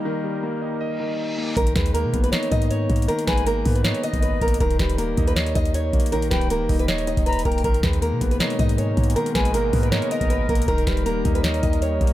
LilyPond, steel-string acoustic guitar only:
\new Staff \with { instrumentName = "Steel-string acoustic guitar" } { \time 4/4 \key gis \minor \tempo 4 = 158 r1 | ais'8 b'8 ais'8. b'16 cis''8 dis''8 cis''4 | ais'8 b'8 ais'8. b'16 cis''8 dis''8 b'8 ais'8 | ais'8 b'8 ais'8. b'16 cis''8 dis''8 cis''4 |
ais'8 b'8 ais'8. b'16 cis''8 dis''8 b'8 ais'8 | ais'8 b'8 ais'8. b'16 cis''8 dis''8 cis''4 | ais'8 b'8 ais'8. b'16 cis''8 dis''8 b'8 ais'8 | ais'8 b'8 ais'8. b'16 cis''8 dis''8 cis''4 | }